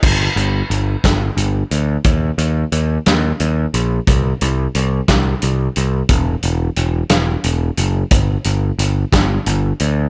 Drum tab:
CC |x-----|------|------|------|
HH |-xxxxx|xxxxxx|xxxxxx|xxxxxx|
SD |---o--|---o--|---o--|---o--|
BD |o--o--|o-----|o--o--|o-----|

CC |------|
HH |xxxxxx|
SD |---o--|
BD |o--o--|